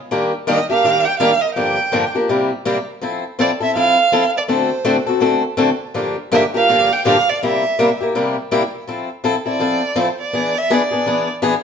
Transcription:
0.11 D#3 G3 A#3 D4 G4
0.47 D#3 G3 A#3 D4 G4 D#5
0.70 A#3 D4 G4 F5
0.84 D#3 G3 A#3 D4 G4
1.05 G5
1.20 D#3 G3 A#3 D4 G4 F5
1.41 D#5
1.55 G2 D3 F3 A#3 D4 G4 G5
1.92 G2 D3 F3 A#3 D4 G4
2.15 F3 A#3 D4 G4
2.29 C3 G3 A#3 E4 G4
2.65 C3 G3 A#3 E4 G4
3.02 F3 C4 E4 A4
3.39 F3 C4 E4 A4 D5
3.60 C4 E4 A4 E5
3.76 F3 C4 E4 A4 F5
4.12 F3 C4 E4 A4
4.37 D5
4.48 D3 A3 C4 F#4 A4 C5
4.85 D3 A3 C4 F#4 A4
5.07 C4 F#4 A4
5.20 D3 A3 C4 F#4 A4
5.57 D3 A3 C4 F#4 A4
5.94 G2 D3 F3 A#3 D4 G4
6.32 G2 D3 F3 A#3 D4 G4 E5
6.54 F3 A#3 D4 G4 F5
6.69 G2 D3 F3 A#3 D4 G4
6.93 G5
7.05 G2 D3 F3 A#3 D4 G4 F5
7.29 D5
7.43 C3 G3 A#3 E4 G4 E5
7.79 C3 G3 A#3 E4 G4
8.01 A#3 E4 G4
8.15 C3 G3 A#3 E4 G4
8.51 C3 G3 A#3 E4 G4
8.88 F3 C4 E4 A4
9.24 F3 C4 E4 A4
9.46 C4 E4 A4 D5
9.59 F3 C4 E4 A4
9.96 F3 C4 E4 A4 C5
10.22 D5
10.33 E3 B3 D4 G#4
10.58 E5
10.70 E3 B3 D4 G#4 D5
10.91 B3 D4 G#4
11.06 E3 B3 D4 G#4
11.42 E3 B3 D4 G#4

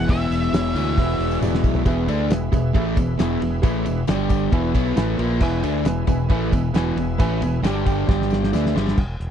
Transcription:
Already playing: E3 B3 E4 G#4 B4 E5
0.08 E1 E2 B2 E3 G#3 B3 E4 G#4 B4 E5, kick, open hi-hat, tambourine
0.21 tambourine
0.31 E1, open hi-hat, tambourine
0.43 tambourine
0.53 E1 E4 G#4 B4 C#5, snare, open hi-hat, tambourine
0.75 D2 E2 B2 E3, open hi-hat, tambourine
0.87 tambourine
0.97 E1 E2 B2 E3 G#3 B3 E4 G#4 B4 E5, kick, open hi-hat, tambourine
1.09 tambourine
1.19 E1, open hi-hat, tambourine
1.31 tambourine
1.41 E1 E4 G#4 B4 D5, high tom, tambourine
1.54 snare
1.64 B1, kick, tambourine
1.75 floor tom, tambourine
1.85 E1 E2 B2 E3 E4 G#4 B4 E5, kick, ride, tambourine
2.07 D2 D3 A3 D4, ride, tambourine
2.30 E1 E2 B2 G#4 B4 E5, snare, ride, tambourine
2.52 E1 E2 B2 G#4 B4 E5, kick, ride, tambourine
2.73 A1 A2 E3 A3 G#4 B4 E5, kick, ride
2.96 E1 E2 B2, kick, ride, tambourine
3.18 E1 E2 B2 E3 G#4 B4 E5, snare, ride, tambourine
3.40 E1 E2 B2, ride, tambourine
3.62 A1 A2 E3 A3 G#4 B4 E5, kick, ride, tambourine
3.85 E1 E2 B2, ride, tambourine
4.07 G1 G2 D3 G3 D4 G4 D5 G5, snare, ride, tambourine
4.28 G4 D5 G5, kick, ride, tambourine
4.51 E1 E2 B2 E3 E4 G#4 B4 E5 G#5, kick, ride
4.74 B1 B2 F#3 B3, kick, ride, tambourine
4.96 A1 A2 E3 A3 B4 E5 G#5 B5, snare, ride, tambourine
5.09 E5
5.18 A#1 A#2 F3 A#3, ride, tambourine
5.40 E1 E2 B2 E3 B4 E5 G#5, kick, crash, tambourine
5.62 D2 D3 A3 D4, ride, tambourine
5.85 E1 E2 B2 B4 E5 G#5, snare, ride, tambourine
6.07 E1 E2 B2 B4 E5 G#5, kick, ride, tambourine
6.29 A1 A2 E3 A3 B4 E5 G#5, kick, ride
6.52 E1 E2 B2, kick, ride, tambourine
6.74 E1 E2 B2 E3 B4 E5 G#5, snare, ride, tambourine
6.96 E1 E2 B2, ride, tambourine
7.18 A1 A2 E3 A3 B4 E5 G#5, kick, ride, tambourine
7.41 E1 E2 B2, ride, tambourine
7.63 G1 G2 D3 G3 D4 G4 D5 G5, snare, ride, tambourine
7.86 G4 D5 G5, kick, ride, tambourine
8.07 G1 G2 D3 G3 G4 D5 G5, kick, snare, tambourine
8.22 snare
8.30 snare, tambourine
8.44 snare
8.53 D2 D3 A3 D4 E4 G#4 B4 E5, snare, tambourine
8.66 snare
8.75 G1 G2 D3 G3, snare, tambourine
8.88 snare
8.98 E1, kick, crash
9.20 E1, closed hi-hat

